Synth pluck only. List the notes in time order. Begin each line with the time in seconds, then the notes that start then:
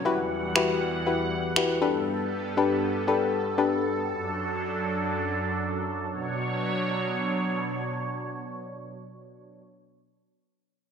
0.05 E4 F#4 G4 B4
0.56 E4 F#4 G4 B4
1.06 E4 F#4 G4 B4
1.56 E4 F#4 G4 B4
1.81 D4 G4 A4 B4
2.57 D4 G4 A4 B4
3.07 D4 G4 A4 B4
3.58 D4 G4 A4 B4